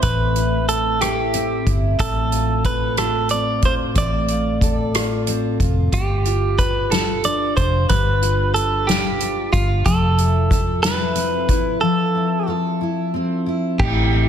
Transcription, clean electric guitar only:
0.03 B4
0.69 A4
1.01 G4
2.00 A4
2.66 B4
2.99 A4
3.31 D5
3.65 C5
3.98 D5
5.94 G4
6.59 B4
6.91 A4
7.25 D5
7.57 C5
7.89 B4
8.54 A4
8.87 G4
9.53 F4
9.86 A4
10.83 B4
11.81 A4
13.80 G4

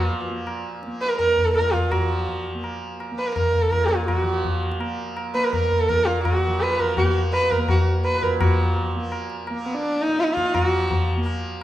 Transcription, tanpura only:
Already playing: A#2 F3 A#3
0.30 A#3
0.86 A#3
1.43 A#2
1.99 F3
2.55 A#3
3.11 A#3
3.68 A#2
4.23 F3
4.79 A#3
5.35 A#3
5.91 A#2
6.48 F3
7.02 A#3
7.58 A#3
8.14 A#2
8.39 F3
8.96 A#3
9.50 A#3
10.08 A#2
10.63 F3
11.17 A#3

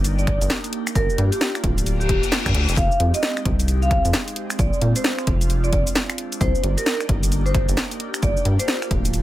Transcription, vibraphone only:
0.19 D5
0.95 A#4
1.32 G4
2.00 G4
2.77 F5
3.14 D#5
3.82 F5
4.59 D5
4.96 C5
5.64 D5
6.41 C5
6.78 A#4
7.46 C5
8.22 D5
8.59 C5

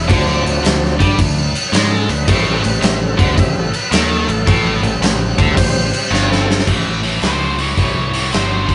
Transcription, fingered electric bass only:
0.10 D2
0.45 D2
0.64 D2
1.00 G2
1.19 D2
1.72 G#2
2.09 D2
2.28 A1
2.64 A1
2.82 A1
3.19 D2
3.38 A1
3.91 D#2
4.28 A1
4.47 A1
4.83 A1
5.00 A1
5.39 D2
5.58 A1
6.11 G1
6.68 A1
7.23 C#2
7.78 C2
8.33 G1

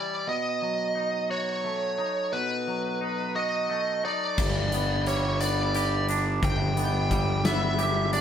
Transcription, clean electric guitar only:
Already playing: E3 G3 E4
0.27 B2
0.62 F#3
0.95 D#4
1.30 F#4
1.64 A3
1.98 D#4
2.33 B2
2.67 F#3
3.01 D#4
3.36 F#4
3.69 A3
4.04 D#4
4.39 G2
4.73 B3
5.07 G3
5.41 B3
5.75 G4
6.09 D4
6.43 G2
6.77 B3
7.11 G3
7.45 B3
7.78 G4
8.13 D4

